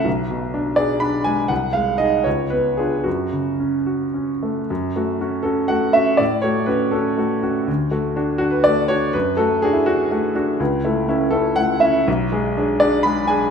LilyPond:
\new Staff \with { instrumentName = "Grand piano" } { \time 6/8 \key fis \minor \tempo 4. = 81 << { r4. d''8 b''8 gis''8 | fis''8 eis''8 dis''8 cis''8 b'8 gis'8 | fis'4. r4. | r4. a'8 fis''8 e''8 |
d''8 cis''8 b'8 a'4. | r4. fis'16 b'16 d''8 cis''8 | b'8 a'8 gis'16 e'16 fis'4. | r4. a'8 fis''8 e''8 |
r4. d''8 b''8 gis''8 | } \\ { b,,8 b,8 d'8 gis'8 d'8 gis8 | bis,,8 gis8 <dis' gis'>8 cis,8 b8 <d' eis'>8 | fis,8 cis8 cis'8 fis'8 cis'8 a8 | fis,8 <a fis'>8 <cis' fis'>8 <cis' fis'>8 <a fis'>8 <cis' fis'>8 |
a,8 <a fis'>8 <cis' fis'>8 <cis' fis'>8 <a fis'>8 <cis' fis'>8 | d,8 <a fis'>8 <d' fis'>8 d'8 <a fis'>8 <d' fis'>8 | fis,8 <a fis'>8 <d' fis'>8 d'8 <a fis'>8 <d' fis'>8 | cis,8 <a e'>8 <cis' e'>8 <cis' e'>8 <a e'>8 <cis' e'>8 |
b,,8 <gis gis'>8 <d' gis'>8 <d' gis'>8 <gis gis'>8 <d' gis'>8 | } >> }